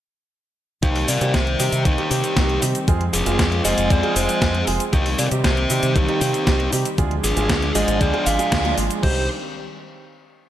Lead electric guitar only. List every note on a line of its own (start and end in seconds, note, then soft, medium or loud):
0.83 1.07 D#4 medium
0.83 1.09 G4 loud
1.08 1.33 A#4 medium
1.08 1.32 D5 loud
1.34 1.82 G4 medium
1.34 1.82 C5 loud
1.85 2.10 D#4 medium
1.85 2.10 G4 medium
2.11 2.59 D#4 medium
2.11 2.59 G4 medium
3.14 3.62 F4 medium
3.14 3.61 G#4 loud
3.65 3.89 C5 medium
3.65 3.91 D#5 loud
3.90 4.15 G#4 medium
3.90 4.14 D5 loud
4.16 4.64 G#4 medium
4.16 4.64 C5 medium
4.93 5.17 D#4 medium
4.93 5.19 G4 loud
5.19 5.26 A#4 medium
5.19 5.26 D5 loud
5.44 5.92 G4 medium
5.44 5.97 C5 loud
5.96 6.20 D#4 medium
5.96 6.20 G4 medium
6.22 6.69 D#4 medium
6.22 6.69 G4 medium
7.24 7.72 F4 medium
7.24 7.77 G#4 medium
7.75 7.99 C5 medium
7.75 7.99 D#5 loud
8.01 8.25 G#4 medium
8.01 8.26 D5 loud
8.26 8.74 D5 medium
8.26 8.74 F5 loud
9.03 9.27 C5 medium